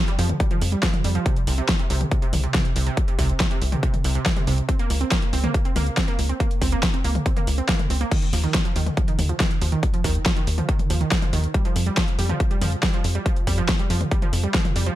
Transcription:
0.08 G3, closed hi-hat
0.19 F2 F3, open hi-hat
0.29 closed hi-hat, mid tom
0.40 G3, kick, closed hi-hat
0.51 F3, closed hi-hat, mid tom
0.61 F2, open hi-hat
0.72 G3
0.83 F3, kick, snare, closed hi-hat
0.94 closed hi-hat, mid tom
1.04 F2 G3, open hi-hat
1.15 F3, closed hi-hat
1.26 C3, kick, closed hi-hat
1.36 closed hi-hat
1.47 C2 C3, open hi-hat
1.58 C3, closed hi-hat
1.69 kick, snare, closed hi-hat
1.79 C3, closed hi-hat
1.90 C2 C3, open hi-hat
2.01 closed hi-hat, mid tom
2.11 C3, kick, closed hi-hat
2.22 C3, closed hi-hat
2.33 C2, open hi-hat, mid tom
2.44 C3, closed hi-hat
2.54 C3, kick, snare, closed hi-hat
2.65 closed hi-hat
2.76 C2 C3, open hi-hat
2.87 C3, closed hi-hat
2.97 kick, closed hi-hat
3.08 C3, closed hi-hat
3.19 C2 C3, kick, open hi-hat
3.29 closed hi-hat
3.40 C3, kick, snare, closed hi-hat
3.51 C3, closed hi-hat
3.62 C2, open hi-hat
3.72 C3, closed hi-hat, mid tom
3.83 C3, kick, closed hi-hat
3.94 closed hi-hat, mid tom
4.04 C2 C3, open hi-hat
4.15 C3, closed hi-hat
4.26 kick, snare, closed hi-hat
4.37 C3, closed hi-hat, mid tom
4.47 C2 C3, open hi-hat
4.58 closed hi-hat
4.69 C4, kick, closed hi-hat
4.79 A#3, closed hi-hat
4.90 C#2, open hi-hat
5.01 C4, closed hi-hat
5.11 A#3, kick, snare, closed hi-hat
5.22 closed hi-hat
5.33 C#2 C4, open hi-hat
5.44 A#3, mid tom
5.54 kick, closed hi-hat
5.65 C4, closed hi-hat
5.76 C#2 A#3, open hi-hat, mid tom
5.87 closed hi-hat
5.97 C4, kick, snare, closed hi-hat
6.08 A#3, closed hi-hat
6.19 C#2, open hi-hat
6.29 C4, closed hi-hat
6.40 A#3, kick, closed hi-hat
6.51 closed hi-hat
6.62 C#2 C4, kick, open hi-hat
6.72 A#3, closed hi-hat
6.83 kick, snare, closed hi-hat
6.94 C4, closed hi-hat
7.04 C#2 A#3, open hi-hat
7.15 closed hi-hat, mid tom
7.26 C4, kick, closed hi-hat
7.37 A#3, closed hi-hat, mid tom
7.47 C#2, open hi-hat
7.58 C4, closed hi-hat
7.69 A#3, kick, snare, closed hi-hat
7.79 closed hi-hat, mid tom
7.90 C#2 C4, open hi-hat
8.01 A#3, closed hi-hat
8.11 D#3, kick, closed hi-hat, crash
8.22 closed hi-hat
8.33 D#2 F3, open hi-hat
8.44 D#3, closed hi-hat
8.54 kick, snare, closed hi-hat
8.65 F3, closed hi-hat
8.76 D#2 D#3, open hi-hat
8.87 closed hi-hat, mid tom
8.97 F3, kick, closed hi-hat
9.08 D#3, closed hi-hat
9.19 D#2, open hi-hat, mid tom
9.29 F3, closed hi-hat
9.40 D#3, kick, snare, closed hi-hat
9.51 closed hi-hat
9.61 D#2 F3, open hi-hat
9.72 D#3, closed hi-hat
9.83 kick, closed hi-hat
9.94 F3, closed hi-hat
10.04 D#2 D#3, kick, open hi-hat
10.26 F3, kick, snare, closed hi-hat
10.36 D#3, closed hi-hat
10.47 D#2, open hi-hat
10.58 F3, closed hi-hat, mid tom
10.69 D#3, kick, closed hi-hat
10.79 closed hi-hat, mid tom
10.90 D#2 F3, open hi-hat
11.01 D#3, closed hi-hat
11.11 kick, snare, closed hi-hat
11.22 F3, closed hi-hat, mid tom
11.33 D#2 D#3, open hi-hat
11.44 closed hi-hat
11.54 G3, kick, closed hi-hat
11.65 F3, closed hi-hat
11.76 F2, open hi-hat
11.87 G3, closed hi-hat
11.97 F3, kick, snare, closed hi-hat
12.08 closed hi-hat
12.19 F2 G3, open hi-hat
12.29 F3, closed hi-hat, mid tom
12.40 kick, closed hi-hat
12.51 G3, closed hi-hat
12.61 F2 F3, open hi-hat, mid tom
12.72 closed hi-hat
12.83 G3, kick, snare, closed hi-hat
12.94 F3, closed hi-hat
13.04 F2, open hi-hat
13.15 G3, closed hi-hat
13.26 F3, kick, closed hi-hat
13.36 closed hi-hat
13.47 F2 G3, kick, open hi-hat
13.58 F3, closed hi-hat
13.69 kick, snare, closed hi-hat
13.79 G3, closed hi-hat
13.90 F2 F3, open hi-hat
14.01 closed hi-hat, mid tom
14.11 G3, kick, closed hi-hat
14.22 F3, closed hi-hat, mid tom
14.33 F2, open hi-hat
14.44 G3, closed hi-hat
14.54 F3, kick, snare, closed hi-hat
14.65 closed hi-hat, mid tom
14.76 F2 G3, open hi-hat
14.86 F3, closed hi-hat

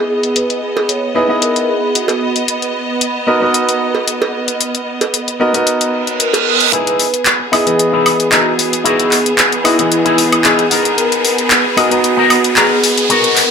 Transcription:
Already playing: B3 D#4 E4 G#4 D#5
0.23 closed hi-hat
0.35 B4, closed hi-hat
0.50 closed hi-hat
0.62 G#4
0.77 cowbell
0.88 C#5, closed hi-hat
1.15 B3 D#4 E4 G#4 B4 D#5
1.28 B3 D#4 E4 G#4 D#5
1.42 A#4, closed hi-hat
1.56 closed hi-hat
1.69 G#4
1.95 F#4, closed hi-hat
2.08 closed hi-hat, cowbell
2.36 closed hi-hat
2.48 closed hi-hat
2.62 closed hi-hat
3.01 closed hi-hat
3.27 B3 D#4 F#4 A#4 D#5
3.40 B3 D#4 F#4 A#4 D#5
3.54 closed hi-hat
3.69 closed hi-hat
3.95 cowbell
4.08 closed hi-hat
4.22 cowbell
4.48 closed hi-hat
4.61 closed hi-hat
4.75 closed hi-hat
5.01 closed hi-hat, cowbell
5.14 closed hi-hat
5.28 closed hi-hat
5.40 B3 D#4 F#4 A#4 D#5
5.53 B3 D#4 F#4 A#4 D#5, closed hi-hat
5.67 closed hi-hat, reverse cymbal
5.81 closed hi-hat
6.07 closed hi-hat
6.19 A#4, closed hi-hat
6.34 closed hi-hat, cowbell
6.60 closed hi-hat
6.72 B3 D#4 E4 G#4 B4, closed hi-hat, riser
6.87 closed hi-hat
7.00 open hi-hat
7.14 closed hi-hat
7.26 clap, closed hi-hat
7.39 muted clean electric guitar stroke
7.52 B3 D#4 E4 G#4 D#5, open hi-hat, high woodblock
7.65 E3 B3 G#4 D#5, closed hi-hat
7.79 closed hi-hat
7.92 D#4 E4 B4
8.06 open hi-hat, high woodblock
8.20 closed hi-hat
8.31 D#4 E4 F#4 A#4, clap, closed hi-hat
8.59 open hi-hat
8.72 muted clean electric guitar stroke, closed hi-hat
8.84 D#4 E4 F#4 G#4, closed hi-hat
9.00 closed hi-hat
9.12 clap, open hi-hat
9.26 closed hi-hat
9.38 clap, closed hi-hat
9.52 muted clean electric guitar stroke, closed hi-hat
9.64 B3 D#4 E4 F#4 G#4 D#5, open hi-hat, high woodblock
9.78 E3 B3 G#4 D#5, closed hi-hat
9.92 closed hi-hat
10.05 D#4 E4 G#4, closed hi-hat
10.18 open hi-hat
10.32 closed hi-hat, high woodblock
10.44 D#4 E4 G#4, clap, closed hi-hat
10.59 closed hi-hat
10.70 B3 D#4 A#4, open hi-hat
10.85 closed hi-hat
10.98 A#4, closed hi-hat
11.12 closed hi-hat
11.25 open hi-hat
11.38 closed hi-hat
11.50 clap, closed hi-hat
11.64 muted clean electric guitar stroke
11.77 B3 D#4 F#4 G#4 A#4 D#5, open hi-hat, high woodblock
11.90 B3 D#4 F#4 D#5 A#5, closed hi-hat
12.04 closed hi-hat
12.17 B3 D#4 A#4
12.30 open hi-hat, high woodblock
12.44 closed hi-hat
12.56 B3 D#4 G#4 A#4, clap, closed hi-hat
12.84 open hi-hat
12.97 muted clean electric guitar stroke, closed hi-hat
13.09 B3 D#4 F#4 A#4, closed hi-hat
13.24 closed hi-hat
13.36 clap, open hi-hat

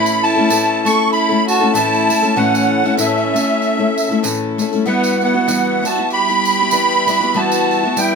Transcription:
Already playing: A2 E3 A3 C#4 E4 A4 B5
0.06 tambourine
0.23 E4 A5, tambourine
0.36 A3 C#4 E4 A4
0.49 A2 E3 A3 C#4 E4 A4, tambourine
0.85 A3 C#4 E4 A4 C#6, tambourine
1.13 E4 B5, tambourine
1.29 A3 C#4 E4 A4
1.47 F#4 A5, tambourine
1.60 A3 C#4 E4 A4
1.73 A2 E3 A3 C#4 E4 A4 A5, tambourine
1.93 tambourine
2.09 A3 C#4 E4 A4, tambourine
2.22 A3 C#4 E4 A4, tambourine
2.36 A2 E3 A3 C#4 E4 A4 F#5, tambourine
2.55 tambourine
2.84 A3 C#4 E4 A4, tambourine
2.97 A2 E3 A3 C#4 E4 A4 E5, tambourine
3.18 tambourine
3.34 A3 C#4 E4 A4, tambourine
3.49 tambourine
3.62 tambourine
3.77 A3 C#4 E4 A4
3.98 tambourine
4.09 A3 C#4 E4 A4
4.23 A2 E3 A3 C#4 E4 A4, tambourine
4.58 A3 C#4 E4 A4, tambourine
4.72 A3 C#4 E4 A4, tambourine
4.85 E3 G3 B3 E4 F#4 E5 F#5, tambourine
5.04 tambourine
5.21 B3 F#5, tambourine
5.34 B3 E4 F#4
5.48 E3 G3 B3 E4 F#4, tambourine
5.83 G3 B3 E4 F#4 A5, tambourine
5.96 B3 E4 F#4
6.10 G4 B5, tambourine
6.28 B3 E4, tambourine
6.45 tambourine
6.58 B3 E4 F#4
6.71 E3 G3 B3 E4, tambourine
6.90 tambourine
7.07 G3 B3 E4 F#4, tambourine
7.20 B3 E4 F#4, tambourine
7.34 E3 G3 B3 E4 F#4 A5, tambourine
7.52 tambourine
7.71 tambourine
7.83 B3 E4 F#4
7.96 E3 G3 B3 E4 G5, tambourine

